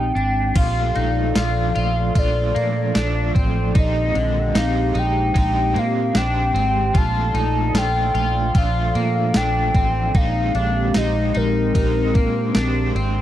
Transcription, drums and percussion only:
0.16 closed hi-hat soft
0.56 kick loud
0.56 crash loud
0.56 ride medium
0.96 ride soft
1.36 snare loud
1.36 ride medium
1.36 tambourine medium
1.76 ride soft
2.15 kick medium
2.15 ride medium
2.56 ride soft
2.95 snare loud
2.95 ride medium
2.95 tambourine medium
3.35 kick medium
3.35 ride soft
3.75 kick loud
3.75 ride medium
4.15 ride soft
4.55 snare loud
4.55 ride medium
4.55 tambourine medium
4.95 ride soft
5.35 kick medium
5.35 ride medium
5.76 ride soft
6.15 snare loud
6.15 ride soft
6.15 tambourine medium
6.56 ride soft
6.95 kick loud
6.95 ride medium
7.35 ride soft
7.75 snare loud
7.75 ride medium
7.75 tambourine medium
8.15 ride soft
8.55 kick medium
8.55 ride medium
8.95 ride soft
9.34 snare loud
9.34 ride medium
9.34 tambourine medium
9.75 kick medium
9.75 ride soft
10.15 kick loud
10.15 ride medium
10.55 ride soft
10.94 snare loud
10.94 ride medium
10.94 tambourine medium
11.35 ride soft
11.75 kick medium
11.75 ride medium
12.15 kick medium
12.15 ride soft
12.55 snare loud
12.55 ride medium
12.55 tambourine medium
12.96 ride soft

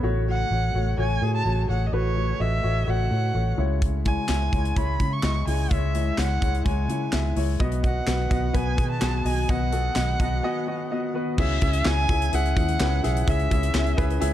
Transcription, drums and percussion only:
3.82 kick medium
3.82 closed hi-hat medium
4.05 kick medium
4.05 closed hi-hat medium
4.29 snare medium
4.29 clap medium
4.29 closed hi-hat medium
4.53 kick medium
4.53 closed hi-hat medium
4.65 closed hi-hat soft
4.76 kick medium
4.76 closed hi-hat medium
5.00 kick medium
5.00 closed hi-hat medium
5.23 snare loud
5.23 clap medium
5.23 closed hi-hat medium
5.48 open hi-hat medium
5.71 kick medium
5.71 closed hi-hat medium
5.95 closed hi-hat medium
6.18 snare medium
6.18 clap medium
6.18 closed hi-hat medium
6.42 kick medium
6.42 closed hi-hat medium
6.55 closed hi-hat soft
6.66 kick medium
6.66 closed hi-hat medium
6.89 closed hi-hat medium
7.12 snare loud
7.12 clap medium
7.12 closed hi-hat medium
7.37 open hi-hat medium
7.60 kick loud
7.60 closed hi-hat medium
7.72 closed hi-hat medium
7.84 kick medium
7.84 closed hi-hat medium
8.07 snare loud
8.07 clap medium
8.07 closed hi-hat medium
8.31 kick medium
8.31 closed hi-hat medium
8.55 kick medium
8.55 closed hi-hat medium
8.78 kick medium
8.78 closed hi-hat medium
9.02 snare loud
9.02 clap medium
9.02 closed hi-hat medium
9.26 open hi-hat medium
9.49 kick loud
9.49 closed hi-hat medium
9.72 closed hi-hat medium
9.96 snare loud
9.96 clap medium
9.96 closed hi-hat medium
10.20 kick medium
10.20 closed hi-hat medium
11.38 kick loud
11.38 crash loud
11.62 kick medium
11.62 closed hi-hat medium
11.73 closed hi-hat medium
11.85 snare loud
11.85 clap medium
12.09 kick medium
12.09 closed hi-hat medium
12.22 closed hi-hat soft
12.33 closed hi-hat medium
12.46 closed hi-hat soft
12.57 kick medium
12.57 closed hi-hat medium
12.69 closed hi-hat medium
12.80 snare loud
12.80 clap loud
13.04 snare soft
13.04 closed hi-hat medium
13.17 closed hi-hat soft
13.28 kick loud
13.28 closed hi-hat loud
13.39 closed hi-hat soft
13.51 kick medium
13.51 closed hi-hat medium
13.63 closed hi-hat medium
13.74 snare loud
13.74 clap medium
13.86 closed hi-hat soft
13.98 kick loud
13.98 closed hi-hat medium
14.10 closed hi-hat soft
14.22 closed hi-hat loud

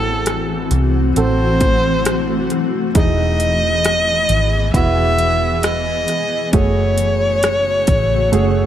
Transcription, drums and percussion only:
0.26 cross-stick medium
0.26 closed hi-hat medium
0.71 closed hi-hat medium
1.16 closed hi-hat medium
1.61 kick medium
1.61 closed hi-hat medium
2.05 cross-stick medium
2.05 closed hi-hat medium
2.50 cross-stick soft
2.50 closed hi-hat soft
2.95 kick loud
2.95 closed hi-hat medium
3.40 closed hi-hat medium
3.85 cross-stick medium
3.85 closed hi-hat medium
4.29 closed hi-hat medium
4.74 kick medium
4.74 closed hi-hat medium
5.18 closed hi-hat medium
5.63 cross-stick medium
5.63 closed hi-hat medium
6.08 cross-stick soft
6.08 closed hi-hat medium
6.53 kick medium
6.53 closed hi-hat medium
6.98 closed hi-hat medium
7.43 cross-stick loud
7.43 closed hi-hat medium
7.87 kick medium
7.87 closed hi-hat medium
8.33 closed hi-hat medium

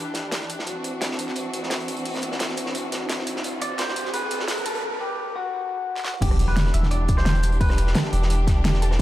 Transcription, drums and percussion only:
0.14 snare medium
0.14 closed hi-hat medium
0.32 snare loud
0.32 closed hi-hat medium
0.41 snare soft
0.50 closed hi-hat medium
0.59 snare medium
0.67 closed hi-hat medium
0.84 closed hi-hat medium
1.01 snare loud
1.01 closed hi-hat medium
1.11 snare soft
1.19 closed hi-hat medium
1.28 snare soft
1.36 closed hi-hat medium
1.54 closed hi-hat medium
1.63 snare soft
1.70 snare loud
1.70 closed hi-hat medium
1.80 closed hi-hat soft
1.88 closed hi-hat medium
1.97 closed hi-hat soft
2.06 closed hi-hat medium
2.06 open hi-hat medium
2.15 snare soft
2.22 closed hi-hat medium
2.32 snare medium
2.39 snare loud
2.39 closed hi-hat medium
2.49 snare soft
2.57 closed hi-hat medium
2.66 snare soft
2.75 closed hi-hat medium
2.92 snare medium
2.92 closed hi-hat medium
3.09 snare loud
3.09 closed hi-hat medium
3.19 snare soft
3.27 closed hi-hat medium
3.36 snare medium
3.44 closed hi-hat loud
3.44 closed hi-hat medium
3.61 closed hi-hat medium
3.78 snare loud
3.78 closed hi-hat medium
3.88 snare medium
3.96 closed hi-hat medium
4.05 snare soft
4.14 closed hi-hat loud
4.14 closed hi-hat medium
4.31 closed hi-hat medium
4.40 snare soft
4.48 snare loud
4.48 closed hi-hat medium
4.48 closed hi-hat loud
4.58 closed hi-hat soft
4.66 closed hi-hat loud
4.66 closed hi-hat medium
4.75 closed hi-hat soft
5.96 snare soft
6.05 snare medium
6.14 mid tom medium
6.22 kick loud
6.22 closed hi-hat medium
6.22 crash loud
6.31 cross-stick soft
6.39 closed hi-hat medium
6.57 snare loud
6.57 closed hi-hat medium
6.57 closed hi-hat loud
6.66 snare soft
6.74 closed hi-hat medium
6.74 closed hi-hat loud
6.83 snare soft
6.91 closed hi-hat medium
7.08 kick loud
7.08 closed hi-hat medium
7.18 cross-stick soft
7.18 snare soft
7.25 snare loud
7.25 closed hi-hat medium
7.35 closed hi-hat soft
7.43 closed hi-hat medium
7.52 closed hi-hat soft
7.61 kick loud
7.61 closed hi-hat medium
7.61 open hi-hat medium
7.70 cross-stick soft
7.70 snare soft
7.78 closed hi-hat medium
7.87 snare soft
7.94 snare loud
7.94 closed hi-hat medium
8.04 snare soft
8.13 closed hi-hat medium
8.13 open hi-hat medium
8.22 snare medium
8.30 closed hi-hat medium
8.47 kick loud
8.47 snare medium
8.47 closed hi-hat medium
8.64 snare loud
8.64 closed hi-hat medium
8.74 snare soft
8.82 closed hi-hat medium
8.82 closed hi-hat loud
8.91 cross-stick soft
8.91 snare medium

